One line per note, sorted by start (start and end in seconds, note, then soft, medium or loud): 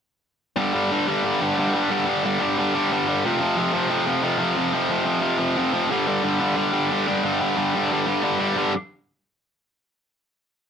0.56 0.75 G2 medium
0.56 0.74 D3 loud
0.56 0.73 G3 loud
0.73 0.91 G2 medium
0.73 0.91 D3 medium
0.73 0.92 G3 medium
0.91 1.09 G2 medium
0.91 1.08 D3 medium
0.91 1.07 G3 medium
1.08 1.22 G2 medium
1.08 1.23 D3 loud
1.08 1.24 G3 loud
1.24 1.41 G2 medium
1.24 1.40 D3 medium
1.24 1.40 G3 loud
1.41 1.57 G2 medium
1.41 1.58 D3 medium
1.41 1.59 G3 medium
1.58 1.75 G2 loud
1.58 1.75 D3 loud
1.58 1.73 G3 loud
1.74 1.89 G2 medium
1.74 1.90 D3 medium
1.74 1.91 G3 loud
1.91 2.08 G2 medium
1.91 2.07 D3 loud
1.91 2.05 G3 loud
2.07 2.23 G2 medium
2.07 2.23 D3 medium
2.07 2.25 G3 medium
2.24 2.40 G2 medium
2.24 2.39 D3 medium
2.24 2.38 G3 loud
2.40 2.56 G2 medium
2.40 2.57 D3 medium
2.40 2.58 G3 loud
2.57 2.74 G2 medium
2.57 2.74 D3 medium
2.57 2.73 G3 loud
2.74 2.90 G2 medium
2.74 2.91 D3 medium
2.74 2.91 G3 medium
2.92 3.08 G2 loud
2.92 3.07 D3 loud
2.92 3.06 G3 loud
3.07 3.24 G2 medium
3.07 3.23 D3 medium
3.07 3.23 G3 medium
3.25 3.42 F2 loud
3.25 3.39 C3 loud
3.25 3.40 F3 loud
3.40 3.56 F2 medium
3.40 3.56 C3 medium
3.40 3.58 F3 medium
3.57 3.74 F2 medium
3.57 3.73 C3 loud
3.57 3.72 F3 loud
3.73 3.88 F2 medium
3.73 3.88 C3 loud
3.73 3.89 F3 loud
3.89 4.06 F2 medium
3.89 4.05 C3 loud
3.89 4.05 F3 loud
4.06 4.20 F2 medium
4.06 4.22 C3 medium
4.06 4.23 F3 medium
4.22 4.38 F2 loud
4.22 4.38 C3 loud
4.22 4.37 F3 loud
4.38 4.55 F2 medium
4.38 4.55 C3 medium
4.38 4.56 F3 medium
4.56 4.73 F2 loud
4.56 4.73 C3 loud
4.56 4.72 F3 loud
4.73 4.89 F2 medium
4.73 4.89 C3 medium
4.73 4.90 F3 medium
4.90 5.05 F2 medium
4.90 5.04 C3 medium
4.90 5.04 F3 medium
5.05 5.19 F2 medium
5.05 5.20 C3 loud
5.05 5.21 F3 loud
5.21 5.38 F2 medium
5.21 5.38 C3 loud
5.21 5.37 F3 loud
5.38 5.56 F2 medium
5.38 5.56 C3 medium
5.38 5.57 F3 medium
5.57 5.73 F2 loud
5.57 5.73 C3 loud
5.57 5.72 F3 loud
5.73 5.89 F2 medium
5.73 5.89 C3 medium
5.73 5.89 F3 medium
5.90 6.08 G2 loud
5.90 6.06 D3 loud
5.90 6.07 G3 loud
6.07 6.22 G2 medium
6.07 6.22 D3 medium
6.07 6.24 G3 medium
6.23 6.41 G2 medium
6.23 6.40 D3 loud
6.23 6.40 G3 loud
6.40 6.56 G2 medium
6.40 6.56 D3 medium
6.40 6.56 G3 medium
6.56 6.74 G2 medium
6.56 6.72 D3 medium
6.56 6.72 G3 loud
6.73 6.90 G2 medium
6.73 6.90 D3 medium
6.73 6.92 G3 loud
6.91 7.10 G2 medium
6.91 7.08 D3 medium
6.91 7.07 G3 medium
7.07 7.22 G2 medium
7.07 7.23 D3 medium
7.07 7.24 G3 medium
7.24 7.41 G2 loud
7.24 7.40 D3 medium
7.24 7.39 G3 loud
7.41 7.55 G2 medium
7.41 7.55 D3 medium
7.41 7.57 G3 medium
7.56 7.75 G2 loud
7.56 7.74 D3 loud
7.56 7.74 G3 loud
7.75 7.90 G2 medium
7.75 7.92 D3 medium
7.75 7.92 G3 medium
7.91 8.07 G2 medium
7.91 8.06 D3 medium
7.91 8.06 G3 loud
8.07 8.22 G2 medium
8.07 8.23 D3 medium
8.07 8.23 G3 medium
8.23 8.40 G2 medium
8.23 8.39 D3 medium
8.23 8.38 G3 medium
8.40 8.55 G2 medium
8.40 8.56 D3 medium
8.40 8.56 G3 medium
8.56 8.71 G2 medium
8.56 8.71 D3 medium
8.56 8.72 G3 medium